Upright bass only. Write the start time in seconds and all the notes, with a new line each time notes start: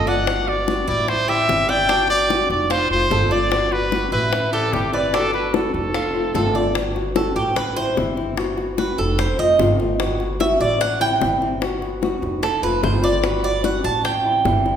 Already playing: G1
0.87 A1
1.49 G1
2.50 F1
2.90 F1
3.10 G1
4.12 A1
4.72 G1
5.74 F1
6.34 G1
7.36 A1
7.97 G1
8.98 F1
9.39 F1
9.59 G1
10.60 A1
11.21 G1
12.22 F1
12.63 F1
12.83 G1
13.84 A1
14.45 G1